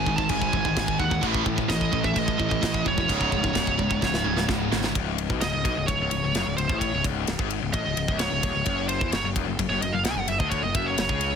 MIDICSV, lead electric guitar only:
0, 0, Header, 1, 2, 480
1, 0, Start_track
1, 0, Key_signature, 4, "minor"
1, 0, Tempo, 464396
1, 1273, Time_signature, 4, 2, 24, 8
1, 11738, End_track
2, 0, Start_track
2, 0, Title_t, "Lead electric guitar"
2, 0, Program_c, 0, 29
2, 0, Note_on_c, 0, 80, 109
2, 167, Note_off_c, 0, 80, 0
2, 174, Note_on_c, 0, 81, 85
2, 301, Note_off_c, 0, 81, 0
2, 301, Note_on_c, 0, 80, 111
2, 1027, Note_off_c, 0, 80, 0
2, 1031, Note_on_c, 0, 78, 83
2, 1256, Note_off_c, 0, 78, 0
2, 1749, Note_on_c, 0, 75, 112
2, 2112, Note_off_c, 0, 75, 0
2, 2117, Note_on_c, 0, 76, 102
2, 2256, Note_off_c, 0, 76, 0
2, 2256, Note_on_c, 0, 75, 114
2, 2970, Note_off_c, 0, 75, 0
2, 2974, Note_on_c, 0, 73, 95
2, 4604, Note_off_c, 0, 73, 0
2, 5597, Note_on_c, 0, 75, 88
2, 6043, Note_off_c, 0, 75, 0
2, 6067, Note_on_c, 0, 73, 86
2, 6751, Note_off_c, 0, 73, 0
2, 6789, Note_on_c, 0, 72, 82
2, 7018, Note_off_c, 0, 72, 0
2, 7022, Note_on_c, 0, 73, 77
2, 7262, Note_off_c, 0, 73, 0
2, 7988, Note_on_c, 0, 75, 93
2, 8439, Note_off_c, 0, 75, 0
2, 8468, Note_on_c, 0, 73, 77
2, 9151, Note_off_c, 0, 73, 0
2, 9183, Note_on_c, 0, 72, 89
2, 9431, Note_off_c, 0, 72, 0
2, 9431, Note_on_c, 0, 73, 90
2, 9577, Note_off_c, 0, 73, 0
2, 10020, Note_on_c, 0, 73, 75
2, 10144, Note_off_c, 0, 73, 0
2, 10149, Note_on_c, 0, 75, 91
2, 10259, Note_on_c, 0, 77, 70
2, 10269, Note_off_c, 0, 75, 0
2, 10381, Note_off_c, 0, 77, 0
2, 10385, Note_on_c, 0, 78, 72
2, 10450, Note_off_c, 0, 78, 0
2, 10450, Note_on_c, 0, 80, 101
2, 10542, Note_off_c, 0, 80, 0
2, 10542, Note_on_c, 0, 78, 85
2, 10627, Note_off_c, 0, 78, 0
2, 10627, Note_on_c, 0, 76, 95
2, 10746, Note_off_c, 0, 76, 0
2, 10746, Note_on_c, 0, 75, 85
2, 10851, Note_on_c, 0, 73, 88
2, 10866, Note_off_c, 0, 75, 0
2, 10978, Note_off_c, 0, 73, 0
2, 10986, Note_on_c, 0, 75, 79
2, 11106, Note_off_c, 0, 75, 0
2, 11118, Note_on_c, 0, 76, 95
2, 11226, Note_on_c, 0, 73, 79
2, 11232, Note_off_c, 0, 76, 0
2, 11738, Note_off_c, 0, 73, 0
2, 11738, End_track
0, 0, End_of_file